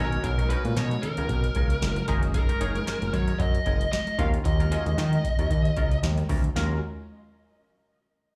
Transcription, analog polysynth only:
0.00 0.41 C#4 medium
0.00 0.41 D#4 medium
0.00 0.41 F#4 medium
0.05 0.45 A#4 medium
0.51 0.94 C#4 medium
0.51 0.94 D#4 medium
0.51 0.94 F#4 medium
0.51 0.94 A#4 medium
2.08 2.51 C#4 medium
2.08 2.51 D#4 medium
2.08 2.52 G#4 medium
2.08 2.52 A#4 loud
2.60 3.04 C#4 medium
2.60 3.04 D#4 medium
2.60 3.04 G#4 medium
2.60 3.05 C#5 medium
4.18 4.62 C#4 medium
4.18 4.62 F4 medium
4.18 4.62 F#4 medium
4.18 4.62 A#4 medium
4.71 5.15 C#4 medium
4.71 5.15 F4 medium
4.71 5.15 F#4 medium
4.71 5.15 G#4 medium
6.56 6.80 C#4 medium
6.56 6.80 F4 medium
6.56 6.80 F#4 medium
6.56 6.80 A#4 loud

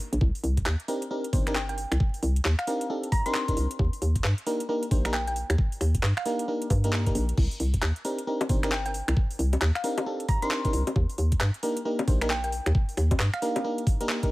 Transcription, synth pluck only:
1.55 1.64 G5 medium
1.69 1.75 G5 medium
2.59 2.90 F5 medium
3.12 3.23 A#5 medium
3.26 3.71 C6 medium
5.14 5.22 G5 medium
5.28 5.33 G5 medium
6.17 6.48 F5 medium
8.72 8.81 G5 medium
8.86 8.91 G5 medium
9.75 10.06 F5 medium
10.29 10.40 A#5 medium
10.42 10.87 C6 medium
12.30 12.39 G5 medium
12.44 12.50 G5 medium
13.34 13.64 F5 medium

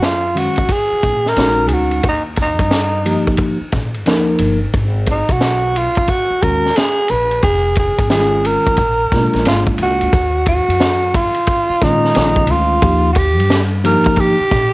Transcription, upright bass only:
0.00 0.46 F#2 medium
0.91 muted upright bass stroke soft
1.03 1.31 A#2 medium
1.37 1.70 A#1 medium
1.70 1.98 D2 medium
2.04 2.59 D#2 loud
2.59 3.15 G2 medium
3.61 muted upright bass stroke soft
3.73 4.07 A#2 medium
4.07 4.35 D#2 medium
4.39 4.68 G1 medium
4.74 5.20 G#1 loud
5.29 5.85 B1 medium
6.30 muted upright bass stroke soft
6.43 6.71 D#2 medium
7.10 7.38 A#1 medium
7.43 7.89 F1 medium
7.98 8.55 G#1 medium
8.78 9.06 A#1 medium
9.12 9.30 B1 medium
9.34 9.44 A#1 medium
9.45 9.64 G#1 medium
9.79 9.97 C#2 medium
10.02 10.11 D2 medium
10.13 10.59 D#2 medium
10.68 11.24 F#2 medium
11.70 muted upright bass stroke soft
11.82 12.10 A#2 medium
12.15 12.49 A#1 medium
12.49 12.77 D2 medium
12.82 13.39 D#2 loud
13.39 13.95 G2 medium
14.40 muted upright bass stroke soft
14.52 14.73 A#2 medium

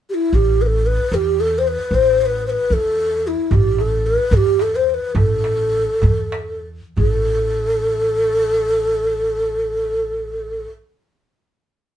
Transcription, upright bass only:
0.33 0.97 A1 medium
1.12 1.76 E2 medium
1.91 2.55 A1 medium
2.70 3.35 E2 medium
3.51 4.15 A1 medium
4.31 4.98 E2 medium
5.15 5.85 A1 medium
6.03 6.79 E2 medium
6.97 10.64 A1 medium

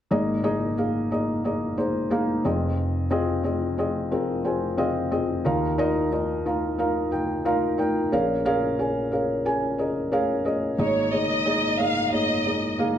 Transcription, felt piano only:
0.11 2.41 G#1 medium
0.11 2.41 G#2 medium
0.11 0.41 A#3 medium
0.11 0.41 D#4 medium
0.11 0.42 G#4 medium
0.11 0.42 D#5 medium
0.43 0.74 A#3 medium
0.43 0.75 D#4 medium
0.43 0.75 G#4 medium
0.43 0.75 D#5 medium
0.77 1.08 A#3 medium
0.77 1.08 D#4 soft
0.77 1.08 G#4 medium
0.77 1.09 F5 medium
1.11 1.41 A#3 medium
1.11 1.42 D#4 medium
1.11 1.42 G#4 medium
1.11 1.42 D#5 medium
1.44 1.75 A#3 medium
1.44 1.75 D#4 medium
1.44 1.75 G#4 medium
1.44 1.76 D#5 medium
1.77 2.08 A#3 medium
1.77 2.08 D#4 medium
1.77 2.08 G#4 medium
1.77 2.09 C5 medium
2.10 2.41 A#3 medium
2.10 2.42 D#4 medium
2.10 2.42 G#4 medium
2.10 2.42 F5 medium
2.45 5.08 F1 medium
2.45 5.08 F2 medium
2.45 3.06 C4 medium
2.45 3.06 F4 medium
2.45 3.06 G#4 medium
2.45 3.06 D#5 medium
3.11 3.42 C4 medium
3.11 3.42 F4 medium
3.11 3.42 G#4 medium
3.11 3.42 D#5 medium
3.44 3.75 C4 medium
3.44 3.75 F4 medium
3.44 3.75 G#4 medium
3.44 3.75 D#5 medium
3.78 4.09 C4 medium
3.78 4.09 F4 medium
3.78 4.09 G#4 medium
3.78 4.09 D#5 medium
4.11 4.42 C4 medium
4.11 4.42 F4 medium
4.11 4.42 G#4 medium
4.11 4.42 A#4 medium
4.44 4.75 C4 medium
4.44 4.75 F4 medium
4.44 4.76 G#4 medium
4.44 4.76 C5 medium
4.44 4.76 G#5 soft
4.77 5.08 C4 medium
4.77 5.09 F4 medium
4.77 5.09 G#4 medium
4.77 5.09 D#5 medium
4.77 5.09 F5 medium
5.11 5.42 C4 medium
5.11 5.42 F4 medium
5.11 5.42 G#4 medium
5.11 5.43 D#5 medium
5.45 8.08 D#2 medium
5.45 8.08 D#3 medium
5.45 5.76 D#4 medium
5.45 5.76 F4 medium
5.45 5.76 A#4 medium
5.45 5.76 F5 medium
5.78 6.09 D#4 medium
5.78 6.09 F4 medium
5.78 6.09 A#4 medium
5.78 6.09 D#5 loud
6.12 6.42 D#4 medium
6.12 6.43 F4 medium
6.12 6.43 A#4 soft
6.12 6.43 D#5 medium
6.45 6.76 D#4 medium
6.45 6.76 F4 medium
6.45 6.76 A#4 medium
6.45 6.76 F5 medium
6.78 7.09 D#4 medium
6.78 7.09 F4 medium
6.78 7.09 A#4 medium
6.78 7.10 F5 medium
7.11 7.42 D#4 medium
7.11 7.42 F4 medium
7.11 7.43 A#4 medium
7.11 7.43 G5 medium
7.45 7.76 D#4 medium
7.45 7.76 F4 medium
7.45 7.76 A#4 medium
7.45 7.76 F5 medium
7.78 8.09 D#4 medium
7.78 8.09 F4 medium
7.78 8.09 A#4 medium
7.78 8.09 G5 medium
8.12 10.75 A#1 medium
8.12 10.75 A#2 medium
8.12 8.43 C#4 medium
8.12 8.43 G#4 medium
8.12 8.43 A#4 medium
8.12 8.43 F5 medium
8.45 8.76 C#4 medium
8.45 8.76 G#4 medium
8.45 8.76 A#4 medium
8.45 8.76 F5 loud
8.79 9.09 C#4 medium
8.79 9.10 G#4 medium
8.79 9.10 A#4 soft
8.79 9.10 G#5 medium
9.12 9.43 C#4 medium
9.12 9.43 G#4 medium
9.12 9.43 A#4 medium
9.12 9.43 F5 medium
9.45 9.76 C#4 medium
9.45 9.76 G#4 medium
9.45 9.76 A#4 medium
9.45 9.76 G#5 medium
9.78 10.09 C#4 medium
9.78 10.09 G#4 medium
9.78 10.10 A#4 medium
9.78 10.10 D#5 medium
10.12 10.43 C#4 medium
10.12 10.43 G#4 medium
10.12 10.43 A#4 medium
10.12 10.43 F5 medium
10.45 10.76 C#4 medium
10.45 10.76 G#4 medium
10.45 10.76 A#4 medium
10.45 10.76 D#5 medium
10.78 12.98 G#1 soft
10.78 12.98 G#2 soft
10.78 11.09 A#3 medium
10.78 11.09 D#4 medium
10.78 11.10 G#4 medium
10.78 11.10 D#5 medium
11.12 11.43 A#3 medium
11.12 11.43 D#4 medium
11.12 11.43 G#4 medium
11.12 11.43 C#5 medium
11.45 11.76 A#3 medium
11.45 11.76 D#4 medium
11.45 11.76 G#4 medium
11.45 11.77 D#5 medium
11.79 12.09 A#3 medium
11.79 12.10 D#4 medium
11.79 12.10 G#4 soft
11.79 12.10 D#5 medium
12.12 12.43 A#3 medium
12.12 12.43 D#4 medium
12.12 12.43 G#4 medium
12.12 12.43 C#5 medium
12.46 12.76 A#3 medium
12.46 12.76 D#4 soft
12.46 12.77 G#4 soft
12.46 12.77 D#5 medium
12.78 12.98 A#3 medium
12.78 12.98 D#4 medium
12.78 12.98 G#4 medium
12.78 12.98 F5 medium

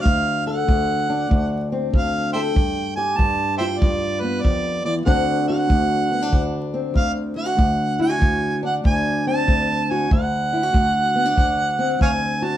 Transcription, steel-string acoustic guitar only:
0.00 0.66 D2 medium
0.00 1.09 D4 medium
0.47 2.34 A4 medium
0.67 1.29 D2 medium
1.10 3.60 D4 medium
1.30 1.92 D2 medium
1.72 2.53 C4 soft
1.93 2.54 D2 medium
2.35 2.53 A4 medium
2.55 3.16 G2 medium
2.97 5.04 G4 medium
3.18 3.80 G2 medium
3.61 5.05 F4 medium
3.81 4.43 G2 medium
4.23 5.04 B3 medium
4.44 4.85 F2 medium
4.85 5.05 E2 medium
5.05 5.69 D2 medium
5.05 10.10 D3 medium
5.05 6.73 C4 medium
5.05 6.11 D4 medium
5.05 5.49 F#4 medium
5.49 7.36 F#4 medium
5.70 6.32 D2 medium
6.12 6.22 B3 medium
6.22 7.59 D4 soft
6.32 6.93 D2 medium
6.74 7.60 C4 soft
6.94 7.56 D2 medium
7.36 7.46 E4 medium
7.46 7.57 F#4 medium
7.57 8.19 D2 medium
8.00 8.09 E4 medium
8.09 9.89 F#4 medium
8.19 8.83 D2 medium
8.63 10.08 D4 medium
8.84 9.46 D2 medium
9.27 10.08 C4 medium
9.47 10.10 D2 medium
9.91 10.09 F#4 medium
10.11 10.72 D2 medium
10.53 10.63 E4 medium
10.63 12.41 F#4 medium
10.73 11.35 D2 medium
11.16 11.26 B3 medium
11.26 12.57 D4 soft
11.36 11.98 D2 medium
11.79 12.57 C4 medium
12.00 12.57 D2 medium
12.42 12.57 F#4 medium

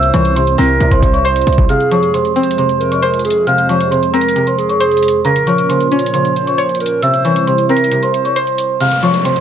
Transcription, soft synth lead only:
0.00 0.54 C5 loud
0.58 1.00 A#4 medium
1.02 1.65 C5 medium
1.69 2.32 G#4 loud
2.36 2.78 C5 medium
2.80 3.22 A#4 medium
3.25 3.46 G#4 medium
3.47 4.10 C5 loud
4.13 4.55 A#4 medium
4.58 5.21 G#4 medium
5.25 5.87 A#4 loud
5.92 6.33 C#5 medium
6.36 6.78 C5 medium
6.81 7.02 A#4 medium
7.03 7.65 C5 loud
7.69 8.11 A#4 medium
8.14 8.76 C5 medium

